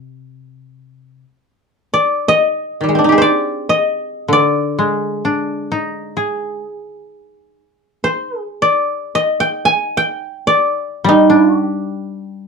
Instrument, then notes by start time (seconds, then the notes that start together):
koto
Already playing: C3 C5
1.94 D5
2.28 D#5
2.81 D#3 G3
2.89 G#3
2.95 C4 D4
3.04 D#4
3.09 G4 G#4
3.18 C5 D5
3.69 D#5
4.28 D3
4.33 D5
4.79 G#3
5.25 D4
5.72 D#4
6.17 G#4
8.04 C5
8.40 G#4
8.62 D5
9.15 D#5
9.40 G5
9.65 G#5
9.97 G5
10.47 D5
11.04 G3
11.09 D#4
11.30 D4
11.61 G4